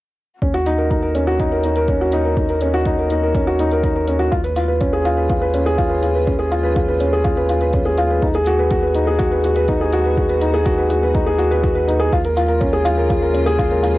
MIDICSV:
0, 0, Header, 1, 5, 480
1, 0, Start_track
1, 0, Key_signature, -6, "minor"
1, 0, Tempo, 487805
1, 411, Time_signature, 4, 2, 24, 8
1, 13758, End_track
2, 0, Start_track
2, 0, Title_t, "Felt piano"
2, 0, Program_c, 0, 0
2, 413, Note_on_c, 0, 61, 63
2, 526, Note_off_c, 0, 61, 0
2, 531, Note_on_c, 0, 66, 84
2, 626, Control_c, 0, 64, 127
2, 645, Note_off_c, 0, 66, 0
2, 650, Note_on_c, 0, 63, 84
2, 719, Note_off_c, 0, 63, 0
2, 769, Note_on_c, 0, 70, 62
2, 839, Note_off_c, 0, 70, 0
2, 885, Note_on_c, 0, 63, 67
2, 1002, Note_off_c, 0, 63, 0
2, 1006, Note_on_c, 0, 70, 58
2, 1123, Note_off_c, 0, 70, 0
2, 1129, Note_on_c, 0, 61, 64
2, 1244, Note_off_c, 0, 61, 0
2, 1250, Note_on_c, 0, 66, 85
2, 1365, Note_off_c, 0, 66, 0
2, 1373, Note_on_c, 0, 63, 84
2, 1441, Note_off_c, 0, 63, 0
2, 1494, Note_on_c, 0, 70, 62
2, 1561, Note_off_c, 0, 70, 0
2, 1619, Note_on_c, 0, 63, 62
2, 1729, Note_off_c, 0, 63, 0
2, 1736, Note_on_c, 0, 70, 68
2, 1848, Note_off_c, 0, 70, 0
2, 1860, Note_on_c, 0, 61, 67
2, 1970, Note_off_c, 0, 61, 0
2, 1981, Note_on_c, 0, 66, 75
2, 2090, Note_off_c, 0, 66, 0
2, 2096, Note_on_c, 0, 63, 85
2, 2162, Note_off_c, 0, 63, 0
2, 2214, Note_on_c, 0, 70, 58
2, 2281, Note_off_c, 0, 70, 0
2, 2335, Note_on_c, 0, 63, 67
2, 2447, Note_off_c, 0, 63, 0
2, 2457, Note_on_c, 0, 70, 66
2, 2568, Note_off_c, 0, 70, 0
2, 2577, Note_on_c, 0, 61, 66
2, 2688, Note_off_c, 0, 61, 0
2, 2696, Note_on_c, 0, 66, 85
2, 2808, Note_off_c, 0, 66, 0
2, 2817, Note_on_c, 0, 63, 81
2, 2883, Note_off_c, 0, 63, 0
2, 2940, Note_on_c, 0, 70, 59
2, 3004, Note_off_c, 0, 70, 0
2, 3057, Note_on_c, 0, 63, 66
2, 3168, Note_off_c, 0, 63, 0
2, 3180, Note_on_c, 0, 70, 62
2, 3290, Note_off_c, 0, 70, 0
2, 3301, Note_on_c, 0, 61, 68
2, 3410, Note_off_c, 0, 61, 0
2, 3417, Note_on_c, 0, 66, 83
2, 3528, Note_off_c, 0, 66, 0
2, 3541, Note_on_c, 0, 63, 82
2, 3605, Note_off_c, 0, 63, 0
2, 3664, Note_on_c, 0, 70, 71
2, 3726, Note_off_c, 0, 70, 0
2, 3779, Note_on_c, 0, 63, 72
2, 3889, Note_off_c, 0, 63, 0
2, 3895, Note_on_c, 0, 70, 63
2, 4007, Note_off_c, 0, 70, 0
2, 4013, Note_on_c, 0, 61, 62
2, 4125, Note_on_c, 0, 66, 80
2, 4126, Note_off_c, 0, 61, 0
2, 4242, Note_off_c, 0, 66, 0
2, 4246, Note_on_c, 0, 65, 83
2, 4263, Control_c, 0, 64, 0
2, 4317, Note_off_c, 0, 65, 0
2, 4368, Note_on_c, 0, 71, 67
2, 4438, Note_off_c, 0, 71, 0
2, 4458, Control_c, 0, 64, 127
2, 4488, Note_on_c, 0, 65, 70
2, 4604, Note_off_c, 0, 65, 0
2, 4605, Note_on_c, 0, 71, 65
2, 4722, Note_off_c, 0, 71, 0
2, 4729, Note_on_c, 0, 61, 68
2, 4844, Note_off_c, 0, 61, 0
2, 4850, Note_on_c, 0, 68, 79
2, 4965, Note_off_c, 0, 68, 0
2, 4969, Note_on_c, 0, 65, 87
2, 5039, Note_off_c, 0, 65, 0
2, 5086, Note_on_c, 0, 71, 60
2, 5157, Note_off_c, 0, 71, 0
2, 5210, Note_on_c, 0, 65, 69
2, 5325, Note_off_c, 0, 65, 0
2, 5328, Note_on_c, 0, 71, 66
2, 5444, Note_off_c, 0, 71, 0
2, 5452, Note_on_c, 0, 61, 63
2, 5566, Note_off_c, 0, 61, 0
2, 5570, Note_on_c, 0, 68, 92
2, 5684, Note_off_c, 0, 68, 0
2, 5687, Note_on_c, 0, 65, 86
2, 5757, Note_off_c, 0, 65, 0
2, 5803, Note_on_c, 0, 71, 60
2, 5875, Note_off_c, 0, 71, 0
2, 5927, Note_on_c, 0, 65, 67
2, 6043, Note_off_c, 0, 65, 0
2, 6051, Note_on_c, 0, 71, 60
2, 6165, Note_off_c, 0, 71, 0
2, 6168, Note_on_c, 0, 61, 68
2, 6284, Note_off_c, 0, 61, 0
2, 6286, Note_on_c, 0, 68, 86
2, 6403, Note_off_c, 0, 68, 0
2, 6410, Note_on_c, 0, 65, 91
2, 6479, Note_off_c, 0, 65, 0
2, 6524, Note_on_c, 0, 71, 66
2, 6596, Note_off_c, 0, 71, 0
2, 6650, Note_on_c, 0, 65, 63
2, 6765, Note_off_c, 0, 65, 0
2, 6771, Note_on_c, 0, 71, 57
2, 6885, Note_off_c, 0, 71, 0
2, 6888, Note_on_c, 0, 61, 67
2, 7004, Note_off_c, 0, 61, 0
2, 7013, Note_on_c, 0, 68, 82
2, 7126, Note_off_c, 0, 68, 0
2, 7126, Note_on_c, 0, 65, 79
2, 7197, Note_off_c, 0, 65, 0
2, 7251, Note_on_c, 0, 71, 63
2, 7320, Note_off_c, 0, 71, 0
2, 7371, Note_on_c, 0, 65, 62
2, 7485, Note_off_c, 0, 65, 0
2, 7490, Note_on_c, 0, 71, 64
2, 7605, Note_off_c, 0, 71, 0
2, 7611, Note_on_c, 0, 61, 66
2, 7725, Note_off_c, 0, 61, 0
2, 7727, Note_on_c, 0, 68, 84
2, 7843, Note_off_c, 0, 68, 0
2, 7851, Note_on_c, 0, 65, 85
2, 7920, Note_off_c, 0, 65, 0
2, 7973, Note_on_c, 0, 71, 61
2, 8041, Note_off_c, 0, 71, 0
2, 8089, Note_on_c, 0, 63, 67
2, 8105, Control_c, 0, 64, 0
2, 8204, Note_off_c, 0, 63, 0
2, 8212, Note_on_c, 0, 68, 85
2, 8280, Control_c, 0, 64, 127
2, 8326, Note_off_c, 0, 68, 0
2, 8334, Note_on_c, 0, 66, 89
2, 8401, Note_off_c, 0, 66, 0
2, 8452, Note_on_c, 0, 71, 65
2, 8520, Note_off_c, 0, 71, 0
2, 8568, Note_on_c, 0, 66, 70
2, 8684, Note_off_c, 0, 66, 0
2, 8685, Note_on_c, 0, 71, 58
2, 8802, Note_off_c, 0, 71, 0
2, 8807, Note_on_c, 0, 63, 67
2, 8923, Note_off_c, 0, 63, 0
2, 8927, Note_on_c, 0, 68, 84
2, 9040, Note_on_c, 0, 66, 90
2, 9043, Note_off_c, 0, 68, 0
2, 9114, Note_off_c, 0, 66, 0
2, 9167, Note_on_c, 0, 71, 61
2, 9238, Note_off_c, 0, 71, 0
2, 9293, Note_on_c, 0, 66, 61
2, 9406, Note_off_c, 0, 66, 0
2, 9409, Note_on_c, 0, 71, 69
2, 9524, Note_off_c, 0, 71, 0
2, 9529, Note_on_c, 0, 63, 74
2, 9644, Note_off_c, 0, 63, 0
2, 9652, Note_on_c, 0, 68, 83
2, 9766, Note_off_c, 0, 68, 0
2, 9772, Note_on_c, 0, 66, 86
2, 9840, Note_off_c, 0, 66, 0
2, 9893, Note_on_c, 0, 71, 62
2, 9961, Note_off_c, 0, 71, 0
2, 10015, Note_on_c, 0, 66, 67
2, 10127, Note_off_c, 0, 66, 0
2, 10128, Note_on_c, 0, 71, 61
2, 10244, Note_off_c, 0, 71, 0
2, 10245, Note_on_c, 0, 63, 70
2, 10362, Note_off_c, 0, 63, 0
2, 10368, Note_on_c, 0, 68, 90
2, 10484, Note_off_c, 0, 68, 0
2, 10485, Note_on_c, 0, 66, 88
2, 10557, Note_off_c, 0, 66, 0
2, 10605, Note_on_c, 0, 71, 64
2, 10676, Note_off_c, 0, 71, 0
2, 10729, Note_on_c, 0, 66, 73
2, 10844, Note_off_c, 0, 66, 0
2, 10856, Note_on_c, 0, 71, 61
2, 10965, Note_on_c, 0, 63, 69
2, 10968, Note_off_c, 0, 71, 0
2, 11082, Note_off_c, 0, 63, 0
2, 11086, Note_on_c, 0, 68, 88
2, 11203, Note_off_c, 0, 68, 0
2, 11203, Note_on_c, 0, 66, 80
2, 11276, Note_off_c, 0, 66, 0
2, 11327, Note_on_c, 0, 71, 69
2, 11398, Note_off_c, 0, 71, 0
2, 11447, Note_on_c, 0, 66, 73
2, 11563, Note_off_c, 0, 66, 0
2, 11564, Note_on_c, 0, 71, 62
2, 11682, Note_off_c, 0, 71, 0
2, 11686, Note_on_c, 0, 63, 65
2, 11803, Note_off_c, 0, 63, 0
2, 11804, Note_on_c, 0, 68, 87
2, 11922, Note_off_c, 0, 68, 0
2, 11934, Note_on_c, 0, 65, 89
2, 11943, Control_c, 0, 64, 0
2, 12001, Note_off_c, 0, 65, 0
2, 12053, Note_on_c, 0, 70, 69
2, 12121, Note_off_c, 0, 70, 0
2, 12140, Control_c, 0, 64, 127
2, 12171, Note_on_c, 0, 65, 72
2, 12283, Note_on_c, 0, 70, 68
2, 12285, Note_off_c, 0, 65, 0
2, 12401, Note_off_c, 0, 70, 0
2, 12406, Note_on_c, 0, 61, 70
2, 12523, Note_off_c, 0, 61, 0
2, 12527, Note_on_c, 0, 68, 87
2, 12643, Note_off_c, 0, 68, 0
2, 12644, Note_on_c, 0, 65, 100
2, 12716, Note_off_c, 0, 65, 0
2, 12765, Note_on_c, 0, 70, 65
2, 12837, Note_off_c, 0, 70, 0
2, 12886, Note_on_c, 0, 65, 73
2, 13003, Note_off_c, 0, 65, 0
2, 13008, Note_on_c, 0, 70, 67
2, 13124, Note_off_c, 0, 70, 0
2, 13125, Note_on_c, 0, 61, 70
2, 13242, Note_off_c, 0, 61, 0
2, 13243, Note_on_c, 0, 68, 101
2, 13362, Note_off_c, 0, 68, 0
2, 13367, Note_on_c, 0, 65, 90
2, 13437, Note_off_c, 0, 65, 0
2, 13487, Note_on_c, 0, 70, 63
2, 13557, Note_off_c, 0, 70, 0
2, 13602, Note_on_c, 0, 65, 65
2, 13718, Note_on_c, 0, 70, 61
2, 13721, Note_off_c, 0, 65, 0
2, 13758, Note_off_c, 0, 70, 0
2, 13758, End_track
3, 0, Start_track
3, 0, Title_t, "String section"
3, 0, Program_c, 1, 48
3, 4253, Note_on_c, 1, 53, 59
3, 4254, Note_on_c, 1, 49, 66
3, 4256, Note_on_c, 1, 56, 60
3, 4256, Note_on_c, 1, 65, 75
3, 4257, Note_on_c, 1, 59, 59
3, 8054, Note_off_c, 1, 49, 0
3, 8054, Note_off_c, 1, 53, 0
3, 8055, Note_off_c, 1, 65, 0
3, 8056, Note_off_c, 1, 59, 0
3, 8094, Note_on_c, 1, 54, 57
3, 8096, Note_on_c, 1, 59, 59
3, 8097, Note_on_c, 1, 66, 74
3, 8098, Note_on_c, 1, 51, 61
3, 11895, Note_off_c, 1, 54, 0
3, 11895, Note_off_c, 1, 56, 0
3, 11895, Note_off_c, 1, 59, 0
3, 11896, Note_off_c, 1, 51, 0
3, 11896, Note_off_c, 1, 66, 0
3, 11921, Note_on_c, 1, 65, 77
3, 11922, Note_on_c, 1, 58, 59
3, 11923, Note_on_c, 1, 53, 60
3, 11924, Note_on_c, 1, 56, 62
3, 11926, Note_on_c, 1, 49, 70
3, 13758, Note_off_c, 1, 49, 0
3, 13758, Note_off_c, 1, 53, 0
3, 13758, Note_off_c, 1, 56, 0
3, 13758, Note_off_c, 1, 58, 0
3, 13758, Note_off_c, 1, 65, 0
3, 13758, End_track
4, 0, Start_track
4, 0, Title_t, "Analog synth bass"
4, 0, Program_c, 2, 38
4, 414, Note_on_c, 2, 39, 72
4, 4229, Note_off_c, 2, 39, 0
4, 4254, Note_on_c, 2, 39, 73
4, 8069, Note_off_c, 2, 39, 0
4, 8092, Note_on_c, 2, 39, 72
4, 11908, Note_off_c, 2, 39, 0
4, 11934, Note_on_c, 2, 39, 79
4, 13758, Note_off_c, 2, 39, 0
4, 13758, End_track
5, 0, Start_track
5, 0, Title_t, "Drums"
5, 412, Note_on_c, 9, 36, 84
5, 511, Note_off_c, 9, 36, 0
5, 531, Note_on_c, 9, 42, 34
5, 630, Note_off_c, 9, 42, 0
5, 651, Note_on_c, 9, 42, 54
5, 750, Note_off_c, 9, 42, 0
5, 893, Note_on_c, 9, 36, 84
5, 893, Note_on_c, 9, 42, 33
5, 991, Note_off_c, 9, 36, 0
5, 992, Note_off_c, 9, 42, 0
5, 1129, Note_on_c, 9, 42, 55
5, 1228, Note_off_c, 9, 42, 0
5, 1370, Note_on_c, 9, 42, 34
5, 1374, Note_on_c, 9, 36, 89
5, 1469, Note_off_c, 9, 42, 0
5, 1472, Note_off_c, 9, 36, 0
5, 1607, Note_on_c, 9, 42, 53
5, 1706, Note_off_c, 9, 42, 0
5, 1728, Note_on_c, 9, 42, 26
5, 1826, Note_off_c, 9, 42, 0
5, 1849, Note_on_c, 9, 42, 36
5, 1853, Note_on_c, 9, 36, 84
5, 1948, Note_off_c, 9, 42, 0
5, 1952, Note_off_c, 9, 36, 0
5, 2087, Note_on_c, 9, 42, 56
5, 2185, Note_off_c, 9, 42, 0
5, 2333, Note_on_c, 9, 36, 85
5, 2432, Note_off_c, 9, 36, 0
5, 2451, Note_on_c, 9, 42, 33
5, 2550, Note_off_c, 9, 42, 0
5, 2566, Note_on_c, 9, 42, 56
5, 2665, Note_off_c, 9, 42, 0
5, 2809, Note_on_c, 9, 42, 36
5, 2814, Note_on_c, 9, 36, 88
5, 2908, Note_off_c, 9, 42, 0
5, 2912, Note_off_c, 9, 36, 0
5, 3051, Note_on_c, 9, 42, 55
5, 3150, Note_off_c, 9, 42, 0
5, 3294, Note_on_c, 9, 36, 101
5, 3297, Note_on_c, 9, 42, 38
5, 3392, Note_off_c, 9, 36, 0
5, 3396, Note_off_c, 9, 42, 0
5, 3536, Note_on_c, 9, 42, 52
5, 3634, Note_off_c, 9, 42, 0
5, 3655, Note_on_c, 9, 42, 28
5, 3753, Note_off_c, 9, 42, 0
5, 3774, Note_on_c, 9, 36, 94
5, 3776, Note_on_c, 9, 42, 37
5, 3873, Note_off_c, 9, 36, 0
5, 3875, Note_off_c, 9, 42, 0
5, 4011, Note_on_c, 9, 42, 54
5, 4110, Note_off_c, 9, 42, 0
5, 4254, Note_on_c, 9, 36, 89
5, 4352, Note_off_c, 9, 36, 0
5, 4370, Note_on_c, 9, 42, 38
5, 4468, Note_off_c, 9, 42, 0
5, 4489, Note_on_c, 9, 42, 56
5, 4588, Note_off_c, 9, 42, 0
5, 4728, Note_on_c, 9, 42, 39
5, 4733, Note_on_c, 9, 36, 95
5, 4826, Note_off_c, 9, 42, 0
5, 4831, Note_off_c, 9, 36, 0
5, 4970, Note_on_c, 9, 42, 57
5, 5068, Note_off_c, 9, 42, 0
5, 5208, Note_on_c, 9, 42, 40
5, 5212, Note_on_c, 9, 36, 98
5, 5307, Note_off_c, 9, 42, 0
5, 5310, Note_off_c, 9, 36, 0
5, 5447, Note_on_c, 9, 42, 55
5, 5546, Note_off_c, 9, 42, 0
5, 5572, Note_on_c, 9, 42, 29
5, 5671, Note_off_c, 9, 42, 0
5, 5692, Note_on_c, 9, 36, 99
5, 5693, Note_on_c, 9, 42, 38
5, 5790, Note_off_c, 9, 36, 0
5, 5791, Note_off_c, 9, 42, 0
5, 5931, Note_on_c, 9, 42, 59
5, 6029, Note_off_c, 9, 42, 0
5, 6173, Note_on_c, 9, 36, 88
5, 6271, Note_off_c, 9, 36, 0
5, 6286, Note_on_c, 9, 42, 36
5, 6385, Note_off_c, 9, 42, 0
5, 6411, Note_on_c, 9, 42, 58
5, 6510, Note_off_c, 9, 42, 0
5, 6650, Note_on_c, 9, 42, 37
5, 6653, Note_on_c, 9, 36, 94
5, 6748, Note_off_c, 9, 42, 0
5, 6751, Note_off_c, 9, 36, 0
5, 6888, Note_on_c, 9, 42, 57
5, 6987, Note_off_c, 9, 42, 0
5, 7128, Note_on_c, 9, 42, 38
5, 7133, Note_on_c, 9, 36, 99
5, 7226, Note_off_c, 9, 42, 0
5, 7232, Note_off_c, 9, 36, 0
5, 7369, Note_on_c, 9, 42, 55
5, 7468, Note_off_c, 9, 42, 0
5, 7486, Note_on_c, 9, 42, 26
5, 7584, Note_off_c, 9, 42, 0
5, 7606, Note_on_c, 9, 42, 35
5, 7612, Note_on_c, 9, 36, 89
5, 7704, Note_off_c, 9, 42, 0
5, 7711, Note_off_c, 9, 36, 0
5, 7848, Note_on_c, 9, 42, 59
5, 7946, Note_off_c, 9, 42, 0
5, 8092, Note_on_c, 9, 36, 87
5, 8191, Note_off_c, 9, 36, 0
5, 8207, Note_on_c, 9, 42, 33
5, 8305, Note_off_c, 9, 42, 0
5, 8324, Note_on_c, 9, 42, 56
5, 8422, Note_off_c, 9, 42, 0
5, 8566, Note_on_c, 9, 42, 38
5, 8572, Note_on_c, 9, 36, 94
5, 8664, Note_off_c, 9, 42, 0
5, 8670, Note_off_c, 9, 36, 0
5, 8803, Note_on_c, 9, 42, 56
5, 8901, Note_off_c, 9, 42, 0
5, 9046, Note_on_c, 9, 42, 37
5, 9051, Note_on_c, 9, 36, 96
5, 9145, Note_off_c, 9, 42, 0
5, 9149, Note_off_c, 9, 36, 0
5, 9288, Note_on_c, 9, 42, 52
5, 9386, Note_off_c, 9, 42, 0
5, 9405, Note_on_c, 9, 42, 27
5, 9503, Note_off_c, 9, 42, 0
5, 9525, Note_on_c, 9, 42, 37
5, 9532, Note_on_c, 9, 36, 86
5, 9624, Note_off_c, 9, 42, 0
5, 9630, Note_off_c, 9, 36, 0
5, 9766, Note_on_c, 9, 42, 58
5, 9864, Note_off_c, 9, 42, 0
5, 10012, Note_on_c, 9, 36, 78
5, 10111, Note_off_c, 9, 36, 0
5, 10128, Note_on_c, 9, 42, 35
5, 10226, Note_off_c, 9, 42, 0
5, 10247, Note_on_c, 9, 42, 55
5, 10346, Note_off_c, 9, 42, 0
5, 10487, Note_on_c, 9, 42, 35
5, 10493, Note_on_c, 9, 36, 82
5, 10585, Note_off_c, 9, 42, 0
5, 10591, Note_off_c, 9, 36, 0
5, 10728, Note_on_c, 9, 42, 53
5, 10826, Note_off_c, 9, 42, 0
5, 10968, Note_on_c, 9, 42, 34
5, 10971, Note_on_c, 9, 36, 99
5, 11067, Note_off_c, 9, 42, 0
5, 11070, Note_off_c, 9, 36, 0
5, 11209, Note_on_c, 9, 42, 52
5, 11308, Note_off_c, 9, 42, 0
5, 11334, Note_on_c, 9, 42, 25
5, 11432, Note_off_c, 9, 42, 0
5, 11451, Note_on_c, 9, 36, 86
5, 11452, Note_on_c, 9, 42, 38
5, 11550, Note_off_c, 9, 36, 0
5, 11551, Note_off_c, 9, 42, 0
5, 11695, Note_on_c, 9, 42, 52
5, 11793, Note_off_c, 9, 42, 0
5, 11933, Note_on_c, 9, 36, 84
5, 12031, Note_off_c, 9, 36, 0
5, 12050, Note_on_c, 9, 42, 35
5, 12148, Note_off_c, 9, 42, 0
5, 12171, Note_on_c, 9, 42, 56
5, 12270, Note_off_c, 9, 42, 0
5, 12408, Note_on_c, 9, 42, 36
5, 12412, Note_on_c, 9, 36, 85
5, 12506, Note_off_c, 9, 42, 0
5, 12510, Note_off_c, 9, 36, 0
5, 12650, Note_on_c, 9, 42, 57
5, 12748, Note_off_c, 9, 42, 0
5, 12891, Note_on_c, 9, 36, 90
5, 12891, Note_on_c, 9, 42, 36
5, 12989, Note_off_c, 9, 36, 0
5, 12990, Note_off_c, 9, 42, 0
5, 13129, Note_on_c, 9, 42, 54
5, 13228, Note_off_c, 9, 42, 0
5, 13254, Note_on_c, 9, 42, 26
5, 13352, Note_off_c, 9, 42, 0
5, 13371, Note_on_c, 9, 36, 82
5, 13373, Note_on_c, 9, 42, 35
5, 13469, Note_off_c, 9, 36, 0
5, 13471, Note_off_c, 9, 42, 0
5, 13612, Note_on_c, 9, 42, 58
5, 13710, Note_off_c, 9, 42, 0
5, 13758, End_track
0, 0, End_of_file